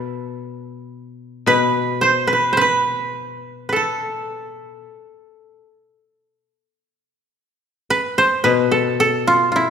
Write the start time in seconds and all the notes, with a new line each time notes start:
Already playing: B2 B4 E5
1.46 B2 B4
2.01 C5
2.27 B4
2.33 B4
2.53 C5
2.57 B4
2.61 B4
3.69 A4 B4
3.76 A4
7.90 B4
8.18 C5
8.44 B2 B4
8.71 A4
9.00 A4
9.27 F4
9.52 F4
9.56 E4